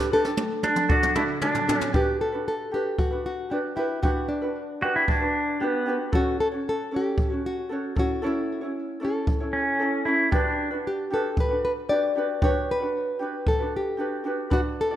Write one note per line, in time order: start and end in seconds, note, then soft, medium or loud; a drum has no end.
0.00 0.11 D4 medium
0.00 0.12 G4 medium
0.00 0.13 G4 loud
0.00 0.12 A4 medium
0.00 0.10 B4 medium
0.11 0.25 D4 medium
0.11 0.25 G4 medium
0.11 1.13 A4 loud
0.11 0.23 A4 medium
0.11 0.25 B4 medium
0.24 0.89 D4 soft
0.24 0.90 G4 soft
0.24 0.87 A4 medium
0.24 snare medium
0.37 high tom medium
0.63 0.91 D4 loud
0.63 high tom medium
0.76 mid tom medium
0.89 1.15 D4 medium
0.89 1.16 F#4 loud
0.89 1.16 F#4 medium
0.89 1.14 A4 medium
0.89 1.17 D5 medium
0.89 kick loud
1.03 mid tom medium
1.15 1.41 D4 medium
1.15 1.23 E4 loud
1.15 1.42 F#4 medium
1.15 1.40 A4 medium
1.15 1.43 D5 medium
1.15 mid tom medium
1.41 1.78 D4 medium
1.41 1.67 D4 medium
1.41 1.68 F#4 medium
1.41 1.66 A4 medium
1.41 1.70 D5 medium
1.41 mid tom medium
1.55 floor tom medium
1.67 1.92 D4 medium
1.67 1.94 F#4 medium
1.67 1.92 A4 medium
1.67 1.95 D5 medium
1.67 floor tom loud
1.78 1.91 C#4 medium
1.78 floor tom medium
1.93 2.33 D4 medium
1.93 2.33 F#4 medium
1.93 2.33 G4 medium
1.93 2.21 G4 medium
1.93 2.31 B4 medium
1.93 kick loud
2.21 2.47 A4 medium
2.32 2.72 D4 soft
2.32 2.73 F#4 soft
2.32 2.72 B4 soft
2.48 2.74 A4 medium
2.71 3.12 D4 soft
2.71 3.11 F#4 medium
2.71 3.11 G4 medium
2.71 2.98 G4 medium
2.71 3.09 B4 medium
2.98 3.25 F#4 medium
2.98 kick loud
3.11 3.50 D4 soft
3.11 3.51 F#4 soft
3.11 3.51 B4 soft
3.26 3.52 F#4 medium
3.50 3.76 D4 soft
3.50 3.58 D4 medium
3.50 3.77 F#4 medium
3.50 3.75 G4 medium
3.50 3.77 B4 medium
3.76 4.02 D4 medium
3.76 4.01 E4 medium
3.76 4.02 F#4 medium
3.76 4.01 G4 medium
3.76 4.03 B4 medium
4.02 4.43 D4 medium
4.02 4.27 F#4 medium
4.02 4.42 F#4 medium
4.02 4.42 G4 medium
4.02 4.41 B4 medium
4.02 kick loud
4.29 5.04 D4 medium
4.42 4.81 D4 soft
4.42 4.82 F#4 soft
4.42 4.82 B4 medium
4.81 5.22 D4 medium
4.81 4.96 F#4 medium
4.81 5.21 F#4 medium
4.81 5.21 G4 medium
4.81 5.19 B4 medium
4.96 5.08 E4 medium
5.08 5.62 D4 medium
5.08 kick loud
5.20 5.61 D4 soft
5.20 5.61 F#4 medium
5.20 5.60 B4 medium
5.60 5.97 B3 medium
5.60 5.86 D4 medium
5.60 5.87 F#4 medium
5.60 5.85 G4 medium
5.60 5.88 B4 medium
5.86 6.13 D4 medium
5.86 6.13 F#4 medium
5.86 6.12 G4 medium
5.86 6.14 B4 medium
6.12 6.52 C#4 medium
6.12 6.52 F#4 medium
6.12 6.40 F#4 medium
6.12 6.52 A4 medium
6.12 6.50 C#5 medium
6.12 kick loud
6.40 6.47 A4 medium
6.52 6.91 C#4 soft
6.52 6.91 F#4 soft
6.52 6.91 C#5 medium
6.69 6.92 A4 medium
6.91 7.31 C#4 medium
6.91 7.31 A4 soft
6.91 7.29 C#5 medium
6.96 7.30 G4 medium
7.18 kick loud
7.30 7.70 C#4 soft
7.30 7.43 F#4 medium
7.30 7.71 F#4 soft
7.30 7.70 C#5 soft
7.46 7.94 F#4 medium
7.69 7.96 C#4 soft
7.69 7.97 F#4 medium
7.69 7.94 A4 medium
7.69 7.97 C#5 medium
7.96 8.22 C#4 medium
7.96 8.22 E4 medium
7.96 8.22 F#4 medium
7.96 8.21 A4 medium
7.96 8.23 C#5 medium
7.96 kick loud
8.22 8.62 C#4 medium
8.22 8.62 E4 medium
8.22 8.62 A4 medium
8.22 8.60 C#5 medium
8.27 8.99 E4 medium
8.61 9.00 C#4 soft
8.61 9.01 E4 medium
8.61 9.01 C#5 soft
9.00 9.41 C#4 medium
9.00 9.40 E4 medium
9.00 9.40 A4 medium
9.00 9.39 C#5 medium
9.05 10.04 A4 medium
9.27 kick loud
9.40 9.80 C#4 soft
9.40 9.80 E4 soft
9.40 9.80 C#5 soft
9.53 10.02 C#4 medium
9.80 10.05 C#4 medium
9.80 10.06 E4 medium
9.80 10.04 A4 medium
9.80 10.04 C#5 medium
10.05 10.32 C#4 medium
10.05 10.30 E4 medium
10.05 10.33 E4 medium
10.05 10.32 A4 medium
10.05 10.31 C#5 medium
10.31 10.69 D4 medium
10.31 10.72 D4 medium
10.31 10.71 F#4 medium
10.31 10.71 G4 medium
10.31 10.70 B4 medium
10.31 kick loud
10.71 11.10 D4 soft
10.71 11.11 F#4 soft
10.71 11.10 B4 medium
10.87 11.10 G4 medium
11.11 11.50 D4 medium
11.11 11.50 F#4 medium
11.11 11.50 G4 medium
11.11 11.39 A4 medium
11.11 11.48 B4 medium
11.37 11.63 B4 medium
11.37 kick loud
11.49 11.89 D4 soft
11.49 11.90 F#4 soft
11.49 11.89 B4 soft
11.65 11.72 B4 medium
11.89 12.15 D4 medium
11.89 12.17 F#4 medium
11.89 12.14 G4 medium
11.89 12.17 B4 medium
11.89 12.43 D5 medium
12.15 12.41 D4 medium
12.15 12.42 F#4 medium
12.15 12.40 G4 medium
12.15 12.43 B4 medium
12.42 12.81 D4 medium
12.42 12.81 F#4 medium
12.42 12.81 G4 medium
12.42 12.79 B4 medium
12.42 12.67 C#5 medium
12.42 kick loud
12.71 13.48 B4 medium
12.80 13.19 D4 soft
12.80 13.20 F#4 soft
12.80 13.20 B4 soft
13.19 13.60 D4 medium
13.19 13.60 F#4 medium
13.19 13.59 G4 medium
13.19 13.58 B4 medium
13.47 13.74 A4 medium
13.47 kick loud
13.59 13.97 D4 soft
13.59 13.98 F#4 soft
13.59 13.99 B4 soft
13.76 14.24 G4 medium
13.97 14.24 D4 medium
13.97 14.25 F#4 medium
13.97 14.23 G4 medium
13.97 14.26 B4 medium
14.24 14.50 D4 medium
14.24 14.50 F#4 medium
14.24 14.50 G4 medium
14.24 14.49 B4 medium
14.50 14.91 D4 medium
14.50 14.91 F#4 medium
14.50 14.60 F#4 medium
14.50 14.90 B4 medium
14.50 14.90 D5 medium
14.50 kick loud
14.81 14.96 A4 medium
14.91 14.96 F#4 soft
14.91 14.96 D5 medium